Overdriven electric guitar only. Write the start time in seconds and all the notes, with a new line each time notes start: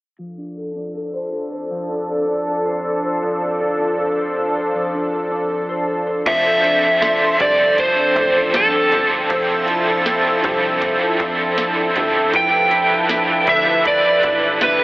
6.26 D3 F3 C4 D4 A4 C5
6.63 C4 D4 A4 C5
7.01 D3 F3 C4 D4 A4 C5
7.39 C4 D4 A4 C5
7.77 C4 D4 A4 C5
8.15 C4 D4 A4 C5
8.54 D3 F3 C4 D4 A4 C5
8.91 C4 D4 A4 C5
9.29 D3 F3 C4 D4 A4 C5
9.67 C4 D4 A4 C5
10.05 D3 F3 C4 D4 A4 C5
10.42 C4 D4 A4 C5
10.80 C4 D4 A4 C5
11.18 C4 D4 A4 C5
11.57 D3 F3 C4 D4 A4 C5
11.95 C4 D4 A4 C5
12.33 D3 F3 G3 G4 B4 E5
12.71 G3 G4 B4 E5
13.09 D3 F3 G3 G4 B4 E5
13.47 G3 G4 B4 E5
13.84 G3 G4 B4 E5
14.22 G3 G4 B4 E5
14.60 D3 F3 G3 G4 B4 E5